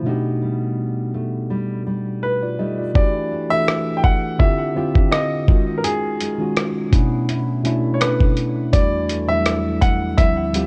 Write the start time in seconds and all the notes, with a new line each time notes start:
Already playing: F3 C4
0.03 B2 A3 D4 D#4
0.08 D#4 G4
0.42 G3
1.14 A3
1.50 G3
1.87 G3
2.23 B4
2.43 F4 D5
2.59 G3 A3 D#4 G4 D#5
2.79 F4 D5
2.94 E3 A3 D4 F#4 G4 D5, kick
3.31 A3
3.49 E3 A3 D4 F#4 A4 E5
3.68 cross-stick
3.97 G5
4.04 F#5, kick
4.38 D3 C4 E4 F4 G4 E5, kick
4.74 D3 C4 E4 F4 G4
4.95 kick
5.12 D#5, cross-stick
5.47 D#3 G#3 C#4 F4 F#4, kick
5.78 A#4
5.84 D#3 G#4, closed hi-hat
6.20 G#3, closed hi-hat
6.38 D#3 G#3 C#4 F4 F#4
6.57 cross-stick, closed hi-hat
6.91 B2 A3 C#4 D4 E4, kick, closed hi-hat
7.29 E4, closed hi-hat
7.63 B2 A3 C#4 D4 E4, closed hi-hat
7.94 C#5
8.01 D4 B4, cross-stick, closed hi-hat
8.21 kick
8.37 closed hi-hat
8.72 E2 E3 G3 A3 D4 F#4 D5, kick, closed hi-hat
9.09 A3, closed hi-hat
9.27 E2 F#3 A3 D4 E4 E5
9.35 G3
9.46 cross-stick, closed hi-hat
9.81 F#5, kick, closed hi-hat
10.16 D2 D3 F3 G3 C4 E4 E5, kick, closed hi-hat
10.53 D2 F3 G3 C4 F4 G4, closed hi-hat